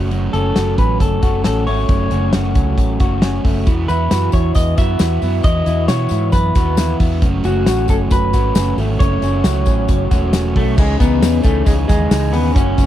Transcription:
Already playing: F#1 F#2 F#3 A3 C#4 F#4
0.11 F#2 F#3 A3 C#4 F#4, closed hi-hat
0.33 F#1 A3 C#4 F#4 A4, closed hi-hat
0.56 F#1 F#3 A3 C#4 F#4, snare, closed hi-hat
0.78 A1 C#4 B4, kick, closed hi-hat
1.00 F#1 F#3 A4, kick, closed hi-hat
1.22 F#1 A3 C#4 F#4, kick, closed hi-hat
1.44 A1 F#3 A3 C#4 F#4 A4, snare, closed hi-hat
1.67 G#1 A3 C#4 F#4 C#5, open hi-hat
1.88 F#1 F#2 F#3 A3 C#4 F#4, kick, closed hi-hat
2.10 F#1 A3 C#4 F#4, closed hi-hat
2.32 F#1 F#3 A3 C#4 F#4, snare, closed hi-hat
2.55 C#2 C#4, kick, closed hi-hat
2.78 A1 F#3, kick, closed hi-hat
3.00 F#1 A3 C#4 F#4, kick, closed hi-hat
3.21 F#3 A3 C#4 F#4, snare, closed hi-hat
3.44 F#1 A3 C#4 F#4, kick, open hi-hat
3.66 E2 E3 B3 E4 F#4, kick, closed hi-hat, tambourine
3.88 E2 B3 E4 F#4 B4, closed hi-hat, tambourine
4.11 F#2 E3 B3 E4 F#4, snare, closed hi-hat, tambourine
4.32 E2 E4 C#5, kick, closed hi-hat, tambourine
4.55 E2 B3 D#5, kick, closed hi-hat, tambourine
4.78 F#2 B3 E4 F#4 E5, kick, closed hi-hat, tambourine
4.99 E2 E3 B3 E4 F#4, snare, closed hi-hat, tambourine
5.22 F#2 B3 E4 F#4, open hi-hat, tambourine
5.43 E2 E3 B3 E4 F#4 D#5, kick, closed hi-hat, tambourine
5.66 E2 B3 E4 F#4, closed hi-hat, tambourine
5.88 B2 E3 B3 E4 F#4 C#5, snare, closed hi-hat, tambourine
6.09 G#2 E4, closed hi-hat, tambourine
6.32 F#2 B3 B4, kick, closed hi-hat, tambourine
6.55 D#2 B3 E4 F#4, kick, snare, closed hi-hat, tambourine
6.77 E3 B3 E4 F#4, snare, closed hi-hat, tambourine
7.00 E2 B3 E4 F#4, kick, open hi-hat, tambourine
7.22 F#1 F#2 F#3 A3 C#4 F#4, kick, closed hi-hat
7.44 F#1 A3 C#4 F#4, closed hi-hat, tambourine
7.66 A1 F#3 A3 C#4 F#4, snare, closed hi-hat, tambourine
7.88 F#1 C#4 A4, kick, closed hi-hat, tambourine
8.11 F#1 F#3 B4, kick, closed hi-hat, tambourine
8.33 G#1 A3 C#4 F#4, kick, closed hi-hat, tambourine
8.55 F#1 F#3 A3 C#4 F#4, snare, closed hi-hat, tambourine
8.78 G#1 A3 C#4 F#4, open hi-hat, tambourine
8.99 F#1 F#2 F#3 A3 C#4 F#4 C#5, kick, closed hi-hat
9.22 F#1 A3 C#4 F#4, closed hi-hat, tambourine
9.44 C#2 F#3 A3 C#4 F#4, snare, closed hi-hat, tambourine
9.66 A1 C#4, kick, closed hi-hat, tambourine
9.88 F#1 F#3, kick, closed hi-hat, tambourine
10.11 E1 A3 C#4 F#4, kick, closed hi-hat, tambourine
10.33 F#3 A3 C#4 F#4, snare, closed hi-hat, tambourine
10.56 B1 A3 C#4 F#4, kick, open hi-hat
10.77 C#2 C#3 E3 G#3 D#4 G#4, kick, crash, tambourine
11.00 C#2 E3 G#3 B3 D#4, kick, hi-hat pedal, open hi-hat, tambourine
11.22 E2 C#3 E3 G#3 C#4 D#4, snare, hi-hat pedal, open hi-hat, tambourine
11.44 C#2 E3 G#3 A3 D#4 G#4, kick, hi-hat pedal, open hi-hat, tambourine
11.66 C#2 C#3 E3 G#3 C#4 D#4, kick, hi-hat pedal, open hi-hat, tambourine
11.88 D#2 G#3 G#4, kick, snare, hi-hat pedal, open hi-hat, tambourine
12.11 C#2 C#3 E3 G#3 D#4, snare, hi-hat pedal, open hi-hat, tambourine
12.33 D#2 B3 G#4, hi-hat pedal, open hi-hat, tambourine
12.55 F#1 F#2 C#3 F#3 A3 C#4 F#4, kick, hi-hat pedal, open hi-hat
12.78 F#1 F#3 A3 C#4, kick, hi-hat pedal, open hi-hat, tambourine

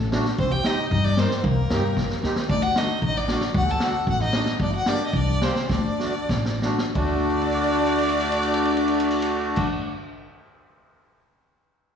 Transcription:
Already playing: A1
0.12 A3 D4 F#4, snare
0.25 snare
0.38 C2 C4 C5, kick
0.52 G4 G5
0.64 C4 D#4 G4 D#5, snare
0.91 G2 D#4 D#5, kick
1.04 D5, snare
1.17 C4 D#4 A#4 C5, snare
1.31 snare
1.38 C5
1.44 C2 A#3 A#4, kick
1.70 G2 C4 D#4 G4, snare
1.96 F#2, kick, snare
2.10 snare
2.23 D#2 C4 D#4 G4, snare
2.36 snare
2.48 D2 D4 D5, kick
2.52 D4 D#4
2.62 F#4 F#5
2.76 A3 D4 D#4 F#4 D#5, snare
3.02 A1 D#4 D#5, kick
3.15 D5, snare
3.28 A3 D4 F#4, snare
3.41 snare
3.54 D2 F#4 F#5, kick
3.67 A4, snare
3.71 A5
3.80 A3 D4 F#4 F#5, snare
4.07 A1 F#4 F#5, kick
4.20 D#4 D#5, snare
4.33 A3 D4 F#4, snare
4.46 snare
4.60 G1 D4 D5, kick
4.73 F#4 F#5
4.86 A#3 D4 G4 D5, snare
5.07 D#5
5.13 C2 D4 D5, kick
5.41 A#3 C4 D4 G4 C5, snare
5.56 snare
5.69 D2 D4 D5, kick, snare
5.98 A3 D4 F#4, snare
6.29 A1, kick, snare
6.45 snare
6.62 A3 D4 F#4, snare
6.78 snare
6.95 D2 A3 D4 F#4 D5, kick, crash
7.30 crash
7.41 ride
7.52 crash
7.64 ride
7.75 crash
7.87 ride
7.98 crash
8.09 ride
8.21 crash
8.32 ride
8.43 crash
8.54 ride
8.65 crash
8.77 ride
8.88 crash
9.00 ride
9.11 crash
9.22 ride
9.56 kick, crash

